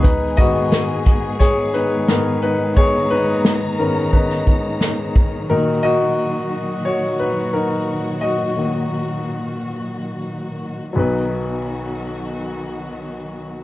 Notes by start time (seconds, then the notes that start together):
0.03 D#3 G#3 B3 D#4 G#4 B4, kick, closed hi-hat
0.37 G#2 D#3 B3 F#4 D#5, kick, closed hi-hat
0.72 snare, closed hi-hat
1.06 kick, closed hi-hat
1.39 G#4 C#5, kick, closed hi-hat
1.74 D#4 B4, closed hi-hat
2.08 G#2 D#3 B3 D#4 A#4, snare, closed hi-hat
2.42 D#4 B4, closed hi-hat
2.77 G#4 C#5 A#5, kick
3.10 D#4 B4
3.45 snare
3.79 G#2 D#3 B3 C#4 A#4
4.13 D#4 B4, kick
4.30 snare
4.47 kick
4.81 snare
5.16 kick
5.50 A#2 D#3 F#3 D#4 F#4 A#4
5.83 F#4 D#5
6.85 F#4 C#5
7.19 D#4 B4
7.53 D#4 A#4
8.21 F#4 D#5
8.56 D#3 F#3 A#3
10.93 B1 D#3 F#3 B3 F#4
10.97 D#4 B4